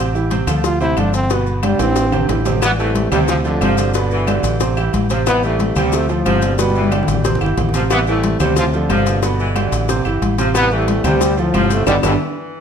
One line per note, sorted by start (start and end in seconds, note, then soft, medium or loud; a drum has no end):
0.00 0.42 A1 loud
0.15 0.28 E3 medium
0.15 0.28 E4 medium
0.15 0.28 G4 medium
0.15 high conga soft
0.15 maracas soft
0.30 0.45 C3 medium
0.30 0.45 C4 medium
0.30 0.45 C5 loud
0.30 cowbell medium
0.30 high conga loud
0.30 low agogo medium
0.30 maracas soft
0.47 0.93 D2 loud
0.47 0.75 F3 medium
0.47 0.75 F4 medium
0.47 0.75 A4 medium
0.47 cowbell medium
0.47 high conga soft
0.47 low conga medium
0.47 low agogo loud
0.47 claves medium
0.47 maracas medium
0.64 0.80 F4 loud
0.64 cowbell loud
0.64 high conga soft
0.64 maracas medium
0.80 0.94 C3 medium
0.80 0.94 C4 loud
0.80 1.00 E4 loud
0.80 0.94 C5 loud
0.80 high conga soft
0.80 low agogo medium
0.80 maracas soft
0.97 1.74 G1 medium
0.97 1.24 F3 medium
0.97 1.14 D4 medium
0.97 1.25 F4 medium
0.97 1.25 A4 medium
0.97 cowbell medium
0.97 high conga medium
0.97 low timbale medium
0.97 low agogo loud
0.97 claves medium
0.97 maracas soft
1.14 1.34 C4 loud
1.14 cowbell medium
1.14 maracas medium
1.30 1.57 B2 medium
1.30 1.57 B3 medium
1.30 1.47 B3 medium
1.30 1.58 B4 medium
1.30 cowbell loud
1.30 high conga soft
1.30 low agogo medium
1.30 maracas medium
1.46 1.64 D3 soft
1.46 high conga soft
1.46 maracas soft
1.63 1.77 D3 medium
1.63 1.81 G3 medium
1.63 1.77 D4 medium
1.63 1.77 G4 medium
1.63 cowbell medium
1.63 high conga loud
1.63 low agogo loud
1.63 claves medium
1.63 maracas soft
1.79 2.26 A1 loud
1.79 2.07 E3 medium
1.79 2.27 C4 loud
1.79 2.07 E4 medium
1.79 2.07 G4 medium
1.79 cowbell medium
1.79 high conga medium
1.79 high timbale medium
1.79 low agogo medium
1.79 maracas medium
1.96 cowbell loud
1.96 high timbale medium
1.96 maracas medium
2.12 2.26 C3 medium
2.12 2.27 C4 medium
2.12 2.27 C5 medium
2.12 low conga medium
2.12 high timbale medium
2.12 low agogo loud
2.12 claves medium
2.12 maracas soft
2.29 3.06 A1 medium
2.29 2.43 E3 medium
2.29 2.43 E4 medium
2.29 2.43 G4 medium
2.29 cowbell medium
2.29 low conga loud
2.29 low timbale medium
2.29 low agogo medium
2.29 maracas soft
2.45 2.59 C3 medium
2.45 2.60 C4 medium
2.45 2.60 C5 medium
2.45 cowbell medium
2.45 low conga medium
2.45 low timbale loud
2.45 maracas medium
2.62 2.71 E3 medium
2.62 2.79 E3 medium
2.62 3.10 G3 medium
2.62 2.70 B3 loud
2.62 cowbell loud
2.62 high conga soft
2.62 low agogo loud
2.62 claves medium
2.62 maracas loud
2.78 3.26 C3 medium
2.78 2.96 E3 medium
2.78 3.06 E3 medium
2.78 3.26 E3 medium
2.78 3.10 A3 loud
2.78 3.06 E4 medium
2.78 3.06 G4 medium
2.78 high conga soft
2.78 maracas soft
2.95 cowbell medium
2.95 high conga loud
2.95 low agogo medium
2.95 maracas soft
3.11 3.58 D2 loud
3.11 3.39 C3 loud
3.11 3.39 C3 medium
3.11 3.19 G3 loud
3.11 3.39 C4 loud
3.11 3.39 C5 medium
3.11 cowbell medium
3.11 high conga soft
3.11 low conga medium
3.11 low agogo loud
3.11 claves medium
3.11 maracas medium
3.28 3.44 A2 medium
3.28 3.91 C3 medium
3.28 3.35 F3 loud
3.28 cowbell loud
3.28 high conga soft
3.28 maracas medium
3.44 3.91 F2 medium
3.44 3.91 A2 medium
3.44 3.75 D3 medium
3.44 3.58 F3 medium
3.44 3.59 F4 medium
3.44 3.59 A4 medium
3.44 high conga soft
3.44 low agogo medium
3.44 maracas soft
3.61 4.38 G1 medium
3.61 3.89 C3 medium
3.61 3.88 F3 medium
3.61 3.89 C4 medium
3.61 3.89 C5 medium
3.61 cowbell medium
3.61 high conga medium
3.61 low agogo loud
3.61 claves medium
3.61 maracas soft
3.77 4.74 G2 medium
3.77 4.74 B2 medium
3.77 4.73 D3 medium
3.77 cowbell medium
3.77 maracas medium
3.94 4.22 B2 medium
3.94 4.22 B3 loud
3.94 4.22 B4 medium
3.94 cowbell loud
3.94 high conga soft
3.94 low agogo medium
3.94 maracas loud
4.11 4.73 E3 medium
4.11 high conga soft
4.11 maracas soft
4.27 4.55 D3 medium
4.27 4.55 D4 medium
4.27 4.55 G4 medium
4.27 cowbell medium
4.27 high conga loud
4.27 low agogo loud
4.27 claves medium
4.27 maracas soft
4.43 4.90 A1 loud
4.43 cowbell medium
4.43 low agogo loud
4.43 maracas medium
4.60 4.74 C3 medium
4.60 4.74 C4 medium
4.60 4.74 C5 medium
4.60 cowbell loud
4.60 high conga soft
4.60 maracas loud
4.77 5.04 E3 medium
4.77 5.04 E4 medium
4.77 5.05 G4 medium
4.77 high conga soft
4.77 low agogo loud
4.77 claves medium
4.77 maracas soft
4.93 5.70 A1 loud
4.93 cowbell medium
4.93 high conga medium
4.93 low agogo medium
4.93 maracas soft
5.10 5.37 C3 medium
5.10 5.19 F3 medium
5.10 5.37 C4 medium
5.10 5.37 C5 loud
5.10 cowbell medium
5.10 high conga soft
5.10 maracas medium
5.26 5.35 E3 loud
5.26 5.44 E3 loud
5.26 5.76 G3 medium
5.26 5.43 B3 loud
5.26 cowbell loud
5.26 high conga soft
5.26 low agogo loud
5.26 claves medium
5.26 maracas medium
5.43 5.90 C3 medium
5.43 5.61 E3 medium
5.43 5.70 E3 medium
5.43 5.90 E3 medium
5.43 5.75 A3 loud
5.43 5.71 E4 medium
5.43 5.71 G4 medium
5.43 high conga soft
5.43 maracas soft
5.59 cowbell medium
5.59 high conga loud
5.59 low agogo medium
5.59 maracas soft
5.76 6.22 D2 loud
5.76 6.03 C3 medium
5.76 6.03 C3 loud
5.76 5.92 G3 loud
5.76 6.03 C4 loud
5.76 6.04 C5 loud
5.76 cowbell medium
5.76 high conga soft
5.76 low conga medium
5.76 low agogo loud
5.76 claves medium
5.76 maracas medium
5.92 6.10 C3 medium
5.92 6.10 F3 medium
5.92 6.10 A3 loud
5.92 cowbell loud
5.92 high conga soft
5.92 maracas medium
6.09 6.56 A2 medium
6.09 6.56 C3 medium
6.09 6.23 F3 medium
6.09 6.43 F3 loud
6.09 6.23 F4 medium
6.09 6.23 A4 medium
6.09 high conga soft
6.09 low agogo medium
6.09 maracas soft
6.25 7.03 G1 medium
6.25 6.53 C3 medium
6.25 6.52 F3 medium
6.25 6.53 C4 medium
6.25 6.53 C5 medium
6.25 cowbell medium
6.25 high conga medium
6.25 low agogo loud
6.25 claves medium
6.25 maracas soft
6.42 7.38 B2 medium
6.42 7.38 D3 medium
6.42 7.38 G3 loud
6.42 cowbell medium
6.42 maracas medium
6.58 6.86 B2 medium
6.58 6.86 B3 loud
6.58 6.86 B4 loud
6.58 cowbell loud
6.58 high conga medium
6.58 low agogo medium
6.58 maracas loud
6.70 high conga medium
6.75 7.37 E3 medium
6.75 maracas soft
6.81 high conga loud
6.91 7.19 D3 medium
6.91 7.19 D4 medium
6.91 7.19 G4 medium
6.91 cowbell medium
6.91 high conga medium
6.91 low agogo loud
6.91 claves medium
6.91 maracas soft
7.03 low conga loud
7.08 7.39 A1 loud
7.08 cowbell medium
7.08 low agogo loud
7.08 maracas medium
7.14 low conga loud
7.24 7.38 C3 medium
7.24 7.39 C4 medium
7.24 7.39 C5 medium
7.24 cowbell loud
7.24 low conga loud
7.24 maracas medium
7.35 low conga medium
7.41 7.57 G1 medium
7.41 7.68 E3 medium
7.41 7.68 E4 medium
7.41 7.69 G4 medium
7.41 low agogo loud
7.41 claves medium
7.41 maracas soft
7.46 low conga medium
7.57 8.34 A1 medium
7.57 cowbell medium
7.57 low conga loud
7.57 low timbale medium
7.57 low agogo medium
7.57 maracas soft
7.69 low conga loud
7.74 8.02 C3 medium
7.74 7.83 F3 medium
7.74 8.02 C4 medium
7.74 8.02 C5 medium
7.74 cowbell medium
7.74 maracas medium
7.80 low conga medium
7.90 7.99 E3 loud
7.90 8.07 E3 medium
7.90 8.40 G3 medium
7.90 7.99 B3 loud
7.90 cowbell loud
7.90 high conga soft
7.90 low agogo loud
7.90 claves medium
7.90 maracas medium
8.07 8.54 C3 medium
8.07 8.24 E3 medium
8.07 8.35 E3 medium
8.07 8.54 E3 medium
8.07 8.39 A3 loud
8.07 8.35 E4 medium
8.07 8.35 G4 medium
8.07 high conga soft
8.07 maracas soft
8.23 cowbell medium
8.23 high conga loud
8.23 low agogo medium
8.23 maracas soft
8.40 8.86 D2 loud
8.40 8.67 C3 medium
8.40 8.68 C3 loud
8.40 8.56 G3 medium
8.40 8.68 C4 medium
8.40 8.68 C5 loud
8.40 cowbell medium
8.40 high conga soft
8.40 low conga medium
8.40 low agogo loud
8.40 claves medium
8.40 maracas medium
8.56 8.73 A2 medium
8.56 9.19 C3 medium
8.56 8.65 F3 loud
8.56 cowbell loud
8.56 high conga soft
8.56 low conga medium
8.56 maracas loud
8.73 9.20 F2 medium
8.73 9.20 A2 medium
8.73 9.04 D3 loud
8.73 8.87 F3 medium
8.73 8.87 F4 medium
8.73 8.87 A4 medium
8.73 high conga soft
8.73 low agogo medium
8.73 maracas soft
8.89 9.66 G1 medium
8.89 9.17 C3 medium
8.89 9.17 F3 medium
8.89 9.17 C4 medium
8.89 9.17 C5 medium
8.89 cowbell medium
8.89 high conga medium
8.89 low timbale medium
8.89 low agogo loud
8.89 claves medium
8.89 maracas soft
9.06 10.02 G2 medium
9.06 10.02 B2 medium
9.06 10.02 D3 medium
9.06 cowbell medium
9.06 maracas medium
9.23 9.50 B2 medium
9.23 9.50 B3 loud
9.23 9.50 B4 medium
9.23 cowbell loud
9.23 high conga soft
9.23 low agogo medium
9.23 maracas medium
9.39 10.01 E3 medium
9.39 high conga soft
9.39 maracas soft
9.55 9.83 D3 medium
9.55 9.83 D4 medium
9.55 9.83 G4 medium
9.55 cowbell medium
9.55 high conga loud
9.55 low agogo loud
9.55 claves medium
9.55 maracas soft
9.72 10.03 A1 loud
9.72 cowbell medium
9.72 low agogo medium
9.72 maracas medium
9.89 10.02 C3 loud
9.89 10.02 C4 medium
9.89 10.03 C5 medium
9.89 cowbell loud
9.89 high conga soft
9.89 maracas medium
10.05 10.21 G1 medium
10.05 10.32 E3 medium
10.05 10.33 E4 medium
10.05 10.33 G4 medium
10.05 high conga soft
10.05 low agogo loud
10.05 claves medium
10.05 maracas soft
10.22 10.99 A1 loud
10.22 cowbell medium
10.22 high conga medium
10.22 low agogo medium
10.22 maracas soft
10.38 10.65 C3 loud
10.38 10.47 F3 medium
10.38 10.66 C4 loud
10.38 10.66 C5 medium
10.38 cowbell medium
10.38 high conga soft
10.38 maracas medium
10.55 10.63 E3 medium
10.55 10.72 E3 medium
10.55 11.04 G3 medium
10.55 10.70 B3 loud
10.55 cowbell loud
10.55 high conga soft
10.55 low agogo loud
10.55 claves medium
10.55 maracas medium
10.71 11.05 C3 medium
10.71 10.98 E3 medium
10.71 10.89 E3 medium
10.71 11.18 E3 medium
10.71 11.05 A3 loud
10.71 10.99 E4 medium
10.71 10.99 G4 medium
10.71 high conga soft
10.71 maracas soft
10.88 cowbell medium
10.88 high conga loud
10.88 low agogo medium
10.88 maracas soft
11.04 11.50 D2 loud
11.04 11.31 C3 medium
11.04 11.32 C3 loud
11.04 11.38 C3 medium
11.04 11.38 G3 loud
11.04 11.32 C4 loud
11.04 11.32 C5 loud
11.04 cowbell medium
11.04 high conga soft
11.04 low conga loud
11.04 low agogo loud
11.04 claves medium
11.04 maracas medium
11.21 cowbell loud
11.21 high conga soft
11.21 maracas loud
11.37 11.85 A2 medium
11.37 11.85 C3 medium
11.37 11.51 F3 medium
11.37 11.71 F3 loud
11.37 11.51 F4 medium
11.37 11.51 A4 medium
11.37 high conga soft
11.37 low agogo medium
11.37 maracas soft
11.53 11.84 G1 medium
11.53 11.81 C3 medium
11.53 11.80 F3 medium
11.53 11.81 C4 loud
11.53 11.81 C5 medium
11.53 cowbell medium
11.53 high conga medium
11.53 low timbale medium
11.53 low agogo loud
11.53 claves medium
11.53 maracas soft
11.70 11.86 A3 loud
11.70 cowbell medium
11.70 maracas medium
11.86 11.99 G1 loud
11.86 11.95 B2 loud
11.86 11.96 D3 loud
11.86 11.98 G3 loud
11.86 11.95 G3 loud
11.86 11.98 B3 loud
11.86 11.98 D4 loud
11.86 cowbell loud
11.86 low conga loud
11.86 high timbale loud
11.86 claves loud
11.86 maracas loud
12.03 12.16 G1 loud
12.03 12.12 B2 loud
12.03 12.12 D3 loud
12.03 12.60 E3 medium
12.03 12.14 G3 loud
12.03 12.12 G3 medium
12.03 12.14 B3 loud
12.03 12.14 D4 loud
12.03 cowbell loud
12.03 low conga loud
12.03 high timbale loud
12.03 claves loud
12.03 maracas loud